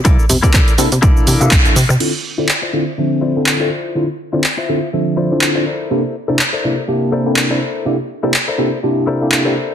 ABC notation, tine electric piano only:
X:1
M:4/4
L:1/16
Q:"Swing 16ths" 1/4=123
K:Dm
V:1 name="Tine electric piano"
[B,DEA] z2 [B,DEA] z2 [B,DEA] z [B,DEa]3 [B,DEA]2 [B,DEA] z2 | [D,CEFA] z2 [D,CEFA] z2 [D,CEFA] z [D,F,CAe]3 [D,CEFA]2 [D,CEFA] z2 | [D,CEFA] z2 [D,CEFA] z2 [D,CEFA] z [D,F,CAe]3 [D,CEFA]2 [D,CEFA] z2 | [C,B,DEGA] z2 [C,B,DEGA] z2 [C,B,DEGA] z [C,B,DEGa]3 [C,B,DEGA]2 [C,B,DEGA] z2 |
[C,B,DEGA] z2 [C,B,DEGA] z2 [C,B,DEGA] z [C,B,DEGa]3 [C,B,DEGA]2 [C,B,DEGA] z2 |]